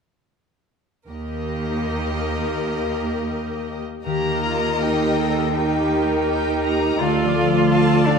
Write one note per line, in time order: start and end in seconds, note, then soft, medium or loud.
1.09 3.81 D#2 soft
1.09 3.81 A#3 soft
1.09 3.81 G4 soft
1.09 3.82 A#4 soft
1.09 3.82 D#5 soft
4.05 6.96 D#2 soft
4.05 7.03 D#3 soft
4.05 4.84 A#3 soft
4.05 4.41 G4 soft
4.05 5.52 A#4 soft
4.05 5.52 D#5 soft
4.05 4.79 A#5 soft
4.31 5.79 D#4 soft
4.43 4.81 F4 soft
4.57 6.02 G4 soft
4.81 5.55 D#4 soft
4.81 5.19 G4 soft
4.81 5.30 A#4 soft
4.81 5.55 G5 soft
5.07 6.51 D#5 soft
5.19 5.56 A4 soft
5.31 6.26 A#4 soft
5.55 7.03 A#3 soft
5.55 7.02 D#4 medium
5.55 6.27 G4 soft
5.55 7.00 A#4 soft
5.55 6.27 G5 soft
5.80 7.03 D#4 soft
6.03 7.03 G4 soft
6.28 6.99 G4 soft
6.28 6.74 A#4 soft
6.28 6.63 G5 soft
6.52 7.03 D#5 soft
6.64 6.99 A#5 soft
6.75 7.03 A#4 soft
6.99 8.19 D2 soft
6.99 8.19 D3 soft
6.99 8.09 F4 medium
6.99 7.34 A4 soft
6.99 7.69 D5 soft
6.99 7.70 F5 soft
7.24 8.19 F3 soft
7.35 8.19 A4 soft
7.47 7.94 F4 soft
7.71 8.19 D5 soft
7.71 8.07 F5 soft
7.71 8.07 A5 soft
7.95 8.19 F4 soft
8.07 8.19 D4 medium
8.07 8.19 F5 soft